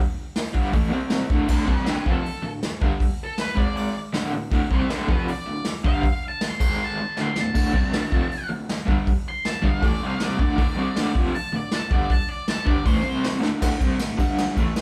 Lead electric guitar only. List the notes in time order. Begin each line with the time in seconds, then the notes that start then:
1.51 A4 D5
1.72 A4 C5
1.91 F4 A4
2.11 A4
3.24 A4
3.39 B4
3.57 D5
3.77 D5
4.72 C5 E5
4.90 A4 D5
5.11 F#4 B4
5.29 D5
5.86 F5
6.28 A5
6.49 C6
6.84 A5
7.22 C6
7.41 A5
9.28 C6
9.46 A5
9.65 F5
9.85 D5
10.07 F5
10.23 D5
10.40 D5
11.35 A5
11.56 D5
11.73 A5
11.93 D5
12.10 A5
12.29 D5
12.49 A5
12.66 D5
12.86 C5